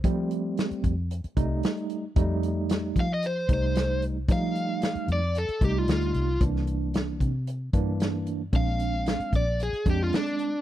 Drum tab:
HH |x-x-xxx-xxx-xxx-|x-x-x-x-x-x-x-x-|x-x-xxx-xxx-xxx-|x-x-x-x-x-x-x-x-|
SD |----o-------o---|----o-------o---|----o-------o---|-o--o-------o---|
BD |o-----o---o-----|o-----o---o-----|o---------o-----|o-----o---o-----|

HH |x-x-xxx-xxx-xxx-|
SD |----o-------o---|
BD |o-----o---o-----|